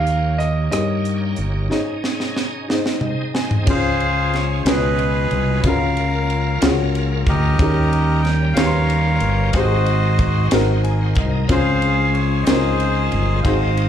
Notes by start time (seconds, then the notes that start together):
Already playing: D#2 D#3 A#3 D#4 G4 A#4 C#5 F5
0.07 closed hi-hat
0.38 D#5, cross-stick, closed hi-hat
0.71 G2 D#4 G4 A#4 C#5 D#5, cross-stick, closed hi-hat
1.05 closed hi-hat
1.36 G1, closed hi-hat
1.69 G#2 C#4 D#4 G#4 C#5 D#5, snare
2.04 snare
2.20 snare
2.36 snare
2.68 G#2 C4 D#4 G#4 C5 D5 D#5, snare
2.77 D#5
2.86 snare
3.01 D#5, mid tom
3.34 G#5, snare
3.51 floor tom
3.65 C#2 C#3 G#3 C#4 F4 G#4 B4, kick, crash
3.69 G#4 C5 F5
4.00 ride
4.33 C#5, snare, ride
4.64 C#2 B2 G#3 C#4 E4 F4 G#4 B4 D#5, snare, ride
4.68 B4
4.72 F4
4.99 ride
5.31 C2, ride
5.64 C#2 C#3 A#3 C#4 F4 F#4 A4 A#4 F5, kick, ride
5.68 A#4
5.72 A#4
5.97 ride
6.30 ride
6.61 C#2 C#4 F4 F#4 G#4, snare, ride
6.95 ride
7.26 D2 G4 A#4 D#5, kick, ride
7.59 D#2 D#3 G3 C#4 D#4 G4 A#4, kick, ride
7.93 ride
8.22 G5, snare, ride
8.54 D#2 C#4 D#4 A#4 C#5 F5, snare, ride
8.58 G4 B4
8.66 C6
8.90 ride
9.20 G1, ride
9.52 G#1 G#2 G#3 C4 D#4 F#4 C5 D#5, kick, ride
9.57 G4
9.64 G#4
9.86 ride
10.19 kick, ride
10.51 G#1 C4 D#4 F#4 A#4, snare, ride
10.84 G#5, ride
11.00 F#4 C5
11.13 C2 C5 F5, kick, ride
11.17 D#5
11.30 A#4 D#5
11.47 C#2 C#3 G#3 C4 C#4 F4 B4, kick, ride
11.51 G#4 C5 F5
11.82 ride
12.13 C#5, ride
12.43 C4 C#4 G#4 C5 D#5, ride
12.47 C#2 D#4 A#4, snare
12.55 F4
12.80 ride
13.12 G1, ride
13.42 G#1 G#2 C4 D#4 C5 D#5 F5, kick, ride
13.46 G#3 D#4 F#4 G#4
13.77 ride